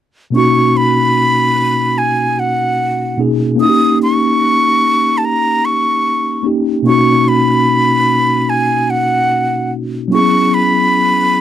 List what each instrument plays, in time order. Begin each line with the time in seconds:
0.30 tine electric piano B2 A#3 C#4
0.35 tine electric piano D#4 F#4, flute C#6
0.77 flute B5
1.98 flute G#5
2.39 flute F#5
3.17 tine electric piano B2 A#3 C#4 D#4 G#4
3.56 tine electric piano A#3 C#4
3.60 tine electric piano D#4 E4, flute D#6
3.69 tine electric piano G4
4.03 flute C#6
5.18 flute A5
5.25 flute A#5
5.65 flute C#6
6.43 tine electric piano A#3 C#4 D#4 G4
6.82 tine electric piano B2 A#3 C#4
6.87 tine electric piano D#4 F#4, flute C#6
7.28 flute B5
8.50 flute G#5
8.90 flute F#5
10.08 tine electric piano F#3 A#3 C#4
10.13 tine electric piano B3 E4 G#4, flute C#6
10.54 flute B5